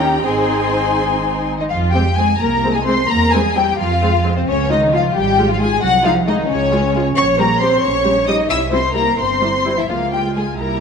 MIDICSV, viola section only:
0, 0, Header, 1, 2, 480
1, 0, Start_track
1, 0, Key_signature, -4, "minor"
1, 0, Tempo, 483871
1, 258, Time_signature, 6, 3, 24, 8
1, 1697, Tempo, 460829
1, 3617, Tempo, 449438
1, 9377, Tempo, 468750
1, 11276, End_track
2, 0, Start_track
2, 0, Title_t, "Viola section"
2, 0, Program_c, 0, 48
2, 0, Note_on_c, 0, 61, 57
2, 0, Note_on_c, 0, 63, 56
2, 240, Note_off_c, 0, 63, 0
2, 251, Note_on_c, 0, 60, 65
2, 252, Note_on_c, 0, 63, 64
2, 262, Note_off_c, 0, 61, 0
2, 1465, Note_off_c, 0, 60, 0
2, 1465, Note_off_c, 0, 63, 0
2, 1943, Note_on_c, 0, 56, 50
2, 1944, Note_on_c, 0, 60, 51
2, 2019, Note_off_c, 0, 56, 0
2, 2019, Note_off_c, 0, 60, 0
2, 2186, Note_on_c, 0, 60, 47
2, 2188, Note_on_c, 0, 56, 48
2, 2262, Note_off_c, 0, 60, 0
2, 2263, Note_off_c, 0, 56, 0
2, 2666, Note_on_c, 0, 60, 51
2, 2667, Note_on_c, 0, 56, 53
2, 2740, Note_off_c, 0, 60, 0
2, 2741, Note_off_c, 0, 56, 0
2, 2900, Note_on_c, 0, 60, 50
2, 2902, Note_on_c, 0, 56, 55
2, 2975, Note_off_c, 0, 60, 0
2, 2977, Note_off_c, 0, 56, 0
2, 3384, Note_on_c, 0, 55, 57
2, 3384, Note_on_c, 0, 60, 56
2, 3459, Note_off_c, 0, 60, 0
2, 3460, Note_off_c, 0, 55, 0
2, 3620, Note_on_c, 0, 60, 49
2, 3623, Note_on_c, 0, 55, 47
2, 3698, Note_off_c, 0, 60, 0
2, 3700, Note_off_c, 0, 55, 0
2, 4108, Note_on_c, 0, 60, 52
2, 4115, Note_on_c, 0, 56, 55
2, 4186, Note_off_c, 0, 60, 0
2, 4191, Note_off_c, 0, 56, 0
2, 4345, Note_on_c, 0, 56, 55
2, 4351, Note_on_c, 0, 60, 60
2, 4424, Note_off_c, 0, 56, 0
2, 4429, Note_off_c, 0, 60, 0
2, 4835, Note_on_c, 0, 65, 60
2, 4841, Note_on_c, 0, 56, 57
2, 4914, Note_off_c, 0, 65, 0
2, 4919, Note_off_c, 0, 56, 0
2, 5080, Note_on_c, 0, 65, 52
2, 5082, Note_on_c, 0, 56, 52
2, 5158, Note_off_c, 0, 65, 0
2, 5159, Note_off_c, 0, 56, 0
2, 5565, Note_on_c, 0, 56, 63
2, 5567, Note_on_c, 0, 65, 57
2, 5640, Note_off_c, 0, 56, 0
2, 5642, Note_off_c, 0, 65, 0
2, 5804, Note_on_c, 0, 56, 57
2, 5807, Note_on_c, 0, 65, 58
2, 5879, Note_off_c, 0, 56, 0
2, 5881, Note_off_c, 0, 65, 0
2, 6280, Note_on_c, 0, 56, 61
2, 6283, Note_on_c, 0, 63, 64
2, 6355, Note_off_c, 0, 56, 0
2, 6358, Note_off_c, 0, 63, 0
2, 6522, Note_on_c, 0, 56, 51
2, 6524, Note_on_c, 0, 63, 53
2, 6597, Note_off_c, 0, 56, 0
2, 6598, Note_off_c, 0, 63, 0
2, 6984, Note_on_c, 0, 56, 57
2, 6988, Note_on_c, 0, 65, 62
2, 7062, Note_off_c, 0, 56, 0
2, 7065, Note_off_c, 0, 65, 0
2, 7231, Note_on_c, 0, 56, 59
2, 7233, Note_on_c, 0, 65, 59
2, 7307, Note_off_c, 0, 56, 0
2, 7309, Note_off_c, 0, 65, 0
2, 7717, Note_on_c, 0, 55, 58
2, 7719, Note_on_c, 0, 67, 55
2, 7791, Note_off_c, 0, 55, 0
2, 7792, Note_off_c, 0, 67, 0
2, 7939, Note_on_c, 0, 67, 52
2, 7942, Note_on_c, 0, 55, 55
2, 8016, Note_off_c, 0, 67, 0
2, 8018, Note_off_c, 0, 55, 0
2, 8411, Note_on_c, 0, 67, 53
2, 8415, Note_on_c, 0, 55, 53
2, 8488, Note_off_c, 0, 67, 0
2, 8492, Note_off_c, 0, 55, 0
2, 8654, Note_on_c, 0, 67, 50
2, 8657, Note_on_c, 0, 55, 52
2, 8730, Note_off_c, 0, 67, 0
2, 8733, Note_off_c, 0, 55, 0
2, 9126, Note_on_c, 0, 64, 52
2, 9129, Note_on_c, 0, 55, 55
2, 9205, Note_off_c, 0, 64, 0
2, 9207, Note_off_c, 0, 55, 0
2, 9368, Note_on_c, 0, 55, 42
2, 9371, Note_on_c, 0, 64, 40
2, 9445, Note_off_c, 0, 55, 0
2, 9447, Note_off_c, 0, 64, 0
2, 9847, Note_on_c, 0, 55, 51
2, 9847, Note_on_c, 0, 64, 47
2, 9925, Note_off_c, 0, 55, 0
2, 9925, Note_off_c, 0, 64, 0
2, 10097, Note_on_c, 0, 64, 48
2, 10101, Note_on_c, 0, 55, 43
2, 10173, Note_off_c, 0, 64, 0
2, 10176, Note_off_c, 0, 55, 0
2, 10337, Note_on_c, 0, 58, 47
2, 10338, Note_on_c, 0, 65, 50
2, 10665, Note_off_c, 0, 58, 0
2, 10706, Note_on_c, 0, 56, 45
2, 11011, Note_off_c, 0, 65, 0
2, 11052, Note_on_c, 0, 64, 40
2, 11054, Note_on_c, 0, 55, 38
2, 11058, Note_off_c, 0, 56, 0
2, 11276, Note_off_c, 0, 55, 0
2, 11276, Note_off_c, 0, 64, 0
2, 11276, End_track
0, 0, End_of_file